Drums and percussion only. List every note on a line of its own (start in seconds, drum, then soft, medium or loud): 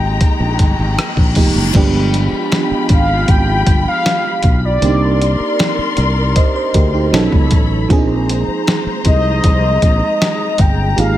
0.21 kick loud
0.21 closed hi-hat medium
0.59 kick medium
0.59 closed hi-hat medium
0.99 cross-stick loud
0.99 closed hi-hat medium
1.17 kick medium
1.35 kick loud
1.35 open hi-hat medium
1.75 kick loud
1.75 closed hi-hat medium
1.75 crash loud
2.14 closed hi-hat medium
2.52 snare loud
2.52 closed hi-hat medium
2.89 kick medium
2.89 closed hi-hat medium
3.28 kick loud
3.28 closed hi-hat medium
3.67 kick loud
3.67 closed hi-hat medium
4.06 snare loud
4.06 closed hi-hat medium
4.43 kick loud
4.43 closed hi-hat medium
4.82 closed hi-hat medium
5.22 closed hi-hat medium
5.59 snare loud
5.59 closed hi-hat medium
5.97 closed hi-hat medium
6.36 kick loud
6.36 closed hi-hat medium
6.74 kick medium
6.74 closed hi-hat medium
7.14 snare loud
7.14 closed hi-hat medium
7.32 kick medium
7.51 kick loud
7.51 closed hi-hat medium
7.90 kick loud
7.90 closed hi-hat medium
8.29 closed hi-hat medium
8.67 snare loud
8.67 closed hi-hat medium
9.05 kick medium
9.05 closed hi-hat medium
9.44 kick loud
9.44 closed hi-hat medium
9.82 kick medium
9.82 closed hi-hat medium
10.22 snare loud
10.22 closed hi-hat medium
10.58 kick loud
10.58 closed hi-hat medium
10.98 closed hi-hat medium